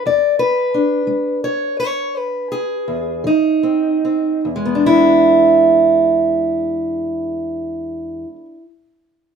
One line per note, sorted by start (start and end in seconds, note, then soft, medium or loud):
0.06 0.66 E2 medium
0.06 0.39 D5 medium
0.39 1.42 B4 medium
0.74 3.22 D4 soft
1.07 1.70 G#3 medium
1.44 1.78 C#5 medium
1.80 2.17 C#5 medium
2.17 3.28 B4 medium
2.52 3.26 G#4 medium
2.88 3.26 E2 medium
3.24 3.96 F3 medium
3.24 4.46 D#4 medium
3.63 4.03 C4 soft
4.05 4.40 C4 soft
4.45 8.24 E2 medium
4.56 8.35 G#3 medium
4.65 8.45 B3 medium
4.75 8.55 D4 medium
4.86 8.62 E4 loud